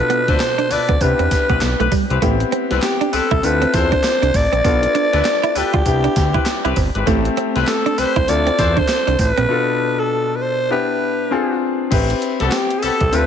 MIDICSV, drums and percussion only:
0, 0, Header, 1, 2, 480
1, 0, Start_track
1, 0, Key_signature, 0, "minor"
1, 0, Tempo, 606061
1, 1759, Time_signature, 4, 2, 24, 8
1, 10506, End_track
2, 0, Start_track
2, 0, Title_t, "Drums"
2, 80, Note_on_c, 9, 42, 68
2, 159, Note_off_c, 9, 42, 0
2, 223, Note_on_c, 9, 36, 95
2, 224, Note_on_c, 9, 38, 61
2, 224, Note_on_c, 9, 42, 49
2, 303, Note_off_c, 9, 36, 0
2, 303, Note_off_c, 9, 38, 0
2, 303, Note_off_c, 9, 42, 0
2, 316, Note_on_c, 9, 39, 93
2, 317, Note_on_c, 9, 38, 109
2, 317, Note_on_c, 9, 54, 85
2, 318, Note_on_c, 9, 42, 84
2, 395, Note_off_c, 9, 39, 0
2, 396, Note_off_c, 9, 38, 0
2, 396, Note_off_c, 9, 54, 0
2, 398, Note_off_c, 9, 42, 0
2, 465, Note_on_c, 9, 42, 59
2, 544, Note_off_c, 9, 42, 0
2, 559, Note_on_c, 9, 54, 63
2, 560, Note_on_c, 9, 46, 83
2, 638, Note_off_c, 9, 54, 0
2, 639, Note_off_c, 9, 46, 0
2, 702, Note_on_c, 9, 42, 50
2, 704, Note_on_c, 9, 36, 98
2, 781, Note_off_c, 9, 42, 0
2, 783, Note_off_c, 9, 36, 0
2, 798, Note_on_c, 9, 42, 73
2, 799, Note_on_c, 9, 36, 97
2, 801, Note_on_c, 9, 54, 80
2, 877, Note_off_c, 9, 42, 0
2, 878, Note_off_c, 9, 36, 0
2, 880, Note_off_c, 9, 54, 0
2, 944, Note_on_c, 9, 42, 56
2, 1024, Note_off_c, 9, 42, 0
2, 1038, Note_on_c, 9, 54, 68
2, 1040, Note_on_c, 9, 36, 102
2, 1040, Note_on_c, 9, 38, 76
2, 1040, Note_on_c, 9, 42, 86
2, 1118, Note_off_c, 9, 54, 0
2, 1119, Note_off_c, 9, 36, 0
2, 1119, Note_off_c, 9, 38, 0
2, 1119, Note_off_c, 9, 42, 0
2, 1183, Note_on_c, 9, 42, 48
2, 1185, Note_on_c, 9, 36, 88
2, 1262, Note_off_c, 9, 42, 0
2, 1264, Note_off_c, 9, 36, 0
2, 1277, Note_on_c, 9, 39, 94
2, 1278, Note_on_c, 9, 42, 78
2, 1279, Note_on_c, 9, 38, 117
2, 1282, Note_on_c, 9, 54, 84
2, 1357, Note_off_c, 9, 39, 0
2, 1357, Note_off_c, 9, 42, 0
2, 1358, Note_off_c, 9, 38, 0
2, 1361, Note_off_c, 9, 54, 0
2, 1428, Note_on_c, 9, 42, 63
2, 1507, Note_off_c, 9, 42, 0
2, 1518, Note_on_c, 9, 54, 74
2, 1519, Note_on_c, 9, 36, 102
2, 1519, Note_on_c, 9, 46, 66
2, 1597, Note_off_c, 9, 54, 0
2, 1598, Note_off_c, 9, 36, 0
2, 1599, Note_off_c, 9, 46, 0
2, 1666, Note_on_c, 9, 42, 50
2, 1745, Note_off_c, 9, 42, 0
2, 1759, Note_on_c, 9, 36, 112
2, 1759, Note_on_c, 9, 54, 67
2, 1760, Note_on_c, 9, 42, 75
2, 1838, Note_off_c, 9, 36, 0
2, 1838, Note_off_c, 9, 54, 0
2, 1839, Note_off_c, 9, 42, 0
2, 1903, Note_on_c, 9, 42, 59
2, 1983, Note_off_c, 9, 42, 0
2, 1998, Note_on_c, 9, 42, 72
2, 2077, Note_off_c, 9, 42, 0
2, 2144, Note_on_c, 9, 38, 61
2, 2144, Note_on_c, 9, 42, 45
2, 2223, Note_off_c, 9, 38, 0
2, 2223, Note_off_c, 9, 42, 0
2, 2236, Note_on_c, 9, 39, 89
2, 2237, Note_on_c, 9, 54, 91
2, 2238, Note_on_c, 9, 38, 112
2, 2239, Note_on_c, 9, 42, 79
2, 2315, Note_off_c, 9, 39, 0
2, 2317, Note_off_c, 9, 38, 0
2, 2317, Note_off_c, 9, 54, 0
2, 2318, Note_off_c, 9, 42, 0
2, 2385, Note_on_c, 9, 42, 61
2, 2464, Note_off_c, 9, 42, 0
2, 2478, Note_on_c, 9, 54, 61
2, 2480, Note_on_c, 9, 46, 71
2, 2558, Note_off_c, 9, 54, 0
2, 2559, Note_off_c, 9, 46, 0
2, 2622, Note_on_c, 9, 42, 52
2, 2624, Note_on_c, 9, 36, 93
2, 2701, Note_off_c, 9, 42, 0
2, 2703, Note_off_c, 9, 36, 0
2, 2719, Note_on_c, 9, 42, 73
2, 2722, Note_on_c, 9, 54, 79
2, 2799, Note_off_c, 9, 42, 0
2, 2802, Note_off_c, 9, 54, 0
2, 2865, Note_on_c, 9, 42, 52
2, 2945, Note_off_c, 9, 42, 0
2, 2958, Note_on_c, 9, 54, 70
2, 2960, Note_on_c, 9, 36, 103
2, 2960, Note_on_c, 9, 38, 73
2, 2960, Note_on_c, 9, 42, 84
2, 3037, Note_off_c, 9, 54, 0
2, 3039, Note_off_c, 9, 38, 0
2, 3039, Note_off_c, 9, 42, 0
2, 3040, Note_off_c, 9, 36, 0
2, 3104, Note_on_c, 9, 42, 48
2, 3105, Note_on_c, 9, 36, 88
2, 3183, Note_off_c, 9, 42, 0
2, 3184, Note_off_c, 9, 36, 0
2, 3198, Note_on_c, 9, 39, 89
2, 3199, Note_on_c, 9, 42, 74
2, 3200, Note_on_c, 9, 38, 123
2, 3203, Note_on_c, 9, 54, 91
2, 3277, Note_off_c, 9, 39, 0
2, 3278, Note_off_c, 9, 42, 0
2, 3279, Note_off_c, 9, 38, 0
2, 3282, Note_off_c, 9, 54, 0
2, 3349, Note_on_c, 9, 42, 61
2, 3428, Note_off_c, 9, 42, 0
2, 3439, Note_on_c, 9, 36, 105
2, 3439, Note_on_c, 9, 54, 76
2, 3440, Note_on_c, 9, 46, 68
2, 3518, Note_off_c, 9, 54, 0
2, 3519, Note_off_c, 9, 36, 0
2, 3519, Note_off_c, 9, 46, 0
2, 3586, Note_on_c, 9, 42, 53
2, 3665, Note_off_c, 9, 42, 0
2, 3680, Note_on_c, 9, 36, 113
2, 3680, Note_on_c, 9, 54, 68
2, 3681, Note_on_c, 9, 42, 73
2, 3759, Note_off_c, 9, 36, 0
2, 3759, Note_off_c, 9, 54, 0
2, 3760, Note_off_c, 9, 42, 0
2, 3825, Note_on_c, 9, 42, 62
2, 3904, Note_off_c, 9, 42, 0
2, 3920, Note_on_c, 9, 42, 73
2, 3999, Note_off_c, 9, 42, 0
2, 4066, Note_on_c, 9, 42, 44
2, 4067, Note_on_c, 9, 38, 61
2, 4145, Note_off_c, 9, 42, 0
2, 4146, Note_off_c, 9, 38, 0
2, 4157, Note_on_c, 9, 39, 91
2, 4158, Note_on_c, 9, 54, 94
2, 4159, Note_on_c, 9, 38, 110
2, 4160, Note_on_c, 9, 42, 82
2, 4236, Note_off_c, 9, 39, 0
2, 4237, Note_off_c, 9, 54, 0
2, 4238, Note_off_c, 9, 38, 0
2, 4239, Note_off_c, 9, 42, 0
2, 4305, Note_on_c, 9, 42, 60
2, 4385, Note_off_c, 9, 42, 0
2, 4399, Note_on_c, 9, 54, 69
2, 4401, Note_on_c, 9, 46, 71
2, 4478, Note_off_c, 9, 54, 0
2, 4480, Note_off_c, 9, 46, 0
2, 4542, Note_on_c, 9, 42, 53
2, 4544, Note_on_c, 9, 36, 94
2, 4621, Note_off_c, 9, 42, 0
2, 4623, Note_off_c, 9, 36, 0
2, 4638, Note_on_c, 9, 42, 77
2, 4640, Note_on_c, 9, 36, 92
2, 4641, Note_on_c, 9, 54, 77
2, 4717, Note_off_c, 9, 42, 0
2, 4719, Note_off_c, 9, 36, 0
2, 4720, Note_off_c, 9, 54, 0
2, 4784, Note_on_c, 9, 42, 53
2, 4863, Note_off_c, 9, 42, 0
2, 4878, Note_on_c, 9, 54, 75
2, 4880, Note_on_c, 9, 36, 101
2, 4880, Note_on_c, 9, 38, 74
2, 4880, Note_on_c, 9, 42, 80
2, 4957, Note_off_c, 9, 54, 0
2, 4959, Note_off_c, 9, 38, 0
2, 4959, Note_off_c, 9, 42, 0
2, 4960, Note_off_c, 9, 36, 0
2, 5023, Note_on_c, 9, 42, 45
2, 5025, Note_on_c, 9, 36, 97
2, 5102, Note_off_c, 9, 42, 0
2, 5104, Note_off_c, 9, 36, 0
2, 5116, Note_on_c, 9, 39, 97
2, 5117, Note_on_c, 9, 42, 82
2, 5118, Note_on_c, 9, 38, 124
2, 5121, Note_on_c, 9, 54, 92
2, 5195, Note_off_c, 9, 39, 0
2, 5196, Note_off_c, 9, 42, 0
2, 5197, Note_off_c, 9, 38, 0
2, 5200, Note_off_c, 9, 54, 0
2, 5267, Note_on_c, 9, 42, 62
2, 5346, Note_off_c, 9, 42, 0
2, 5355, Note_on_c, 9, 54, 75
2, 5357, Note_on_c, 9, 46, 69
2, 5358, Note_on_c, 9, 36, 98
2, 5435, Note_off_c, 9, 54, 0
2, 5436, Note_off_c, 9, 46, 0
2, 5438, Note_off_c, 9, 36, 0
2, 5505, Note_on_c, 9, 42, 53
2, 5584, Note_off_c, 9, 42, 0
2, 5599, Note_on_c, 9, 36, 112
2, 5599, Note_on_c, 9, 42, 76
2, 5599, Note_on_c, 9, 54, 66
2, 5678, Note_off_c, 9, 36, 0
2, 5678, Note_off_c, 9, 42, 0
2, 5678, Note_off_c, 9, 54, 0
2, 5744, Note_on_c, 9, 42, 56
2, 5823, Note_off_c, 9, 42, 0
2, 5839, Note_on_c, 9, 42, 68
2, 5918, Note_off_c, 9, 42, 0
2, 5985, Note_on_c, 9, 38, 60
2, 5985, Note_on_c, 9, 42, 51
2, 6064, Note_off_c, 9, 38, 0
2, 6064, Note_off_c, 9, 42, 0
2, 6077, Note_on_c, 9, 39, 91
2, 6079, Note_on_c, 9, 38, 114
2, 6079, Note_on_c, 9, 54, 90
2, 6080, Note_on_c, 9, 42, 89
2, 6156, Note_off_c, 9, 39, 0
2, 6158, Note_off_c, 9, 38, 0
2, 6158, Note_off_c, 9, 54, 0
2, 6159, Note_off_c, 9, 42, 0
2, 6227, Note_on_c, 9, 42, 63
2, 6306, Note_off_c, 9, 42, 0
2, 6320, Note_on_c, 9, 54, 66
2, 6321, Note_on_c, 9, 46, 75
2, 6399, Note_off_c, 9, 54, 0
2, 6400, Note_off_c, 9, 46, 0
2, 6464, Note_on_c, 9, 36, 89
2, 6464, Note_on_c, 9, 42, 56
2, 6543, Note_off_c, 9, 42, 0
2, 6544, Note_off_c, 9, 36, 0
2, 6559, Note_on_c, 9, 42, 73
2, 6562, Note_on_c, 9, 54, 77
2, 6638, Note_off_c, 9, 42, 0
2, 6641, Note_off_c, 9, 54, 0
2, 6706, Note_on_c, 9, 42, 54
2, 6785, Note_off_c, 9, 42, 0
2, 6799, Note_on_c, 9, 54, 72
2, 6801, Note_on_c, 9, 36, 101
2, 6801, Note_on_c, 9, 38, 75
2, 6801, Note_on_c, 9, 42, 84
2, 6879, Note_off_c, 9, 54, 0
2, 6880, Note_off_c, 9, 36, 0
2, 6880, Note_off_c, 9, 38, 0
2, 6880, Note_off_c, 9, 42, 0
2, 6944, Note_on_c, 9, 42, 45
2, 6945, Note_on_c, 9, 36, 89
2, 7023, Note_off_c, 9, 42, 0
2, 7024, Note_off_c, 9, 36, 0
2, 7037, Note_on_c, 9, 39, 93
2, 7037, Note_on_c, 9, 42, 81
2, 7038, Note_on_c, 9, 38, 115
2, 7041, Note_on_c, 9, 54, 93
2, 7116, Note_off_c, 9, 39, 0
2, 7117, Note_off_c, 9, 42, 0
2, 7118, Note_off_c, 9, 38, 0
2, 7121, Note_off_c, 9, 54, 0
2, 7188, Note_on_c, 9, 42, 60
2, 7267, Note_off_c, 9, 42, 0
2, 7277, Note_on_c, 9, 54, 78
2, 7279, Note_on_c, 9, 36, 104
2, 7279, Note_on_c, 9, 46, 67
2, 7356, Note_off_c, 9, 54, 0
2, 7358, Note_off_c, 9, 36, 0
2, 7358, Note_off_c, 9, 46, 0
2, 7425, Note_on_c, 9, 42, 55
2, 7504, Note_off_c, 9, 42, 0
2, 9437, Note_on_c, 9, 54, 65
2, 9438, Note_on_c, 9, 36, 112
2, 9438, Note_on_c, 9, 42, 76
2, 9438, Note_on_c, 9, 49, 97
2, 9517, Note_off_c, 9, 36, 0
2, 9517, Note_off_c, 9, 42, 0
2, 9517, Note_off_c, 9, 49, 0
2, 9517, Note_off_c, 9, 54, 0
2, 9583, Note_on_c, 9, 42, 61
2, 9662, Note_off_c, 9, 42, 0
2, 9678, Note_on_c, 9, 42, 72
2, 9757, Note_off_c, 9, 42, 0
2, 9821, Note_on_c, 9, 38, 59
2, 9821, Note_on_c, 9, 42, 53
2, 9900, Note_off_c, 9, 42, 0
2, 9901, Note_off_c, 9, 38, 0
2, 9914, Note_on_c, 9, 39, 96
2, 9915, Note_on_c, 9, 54, 88
2, 9916, Note_on_c, 9, 38, 112
2, 9917, Note_on_c, 9, 42, 82
2, 9993, Note_off_c, 9, 39, 0
2, 9995, Note_off_c, 9, 38, 0
2, 9995, Note_off_c, 9, 54, 0
2, 9996, Note_off_c, 9, 42, 0
2, 10062, Note_on_c, 9, 42, 60
2, 10142, Note_off_c, 9, 42, 0
2, 10157, Note_on_c, 9, 54, 62
2, 10159, Note_on_c, 9, 46, 81
2, 10237, Note_off_c, 9, 54, 0
2, 10238, Note_off_c, 9, 46, 0
2, 10300, Note_on_c, 9, 42, 54
2, 10303, Note_on_c, 9, 36, 92
2, 10379, Note_off_c, 9, 42, 0
2, 10382, Note_off_c, 9, 36, 0
2, 10396, Note_on_c, 9, 42, 69
2, 10400, Note_on_c, 9, 54, 77
2, 10476, Note_off_c, 9, 42, 0
2, 10479, Note_off_c, 9, 54, 0
2, 10506, End_track
0, 0, End_of_file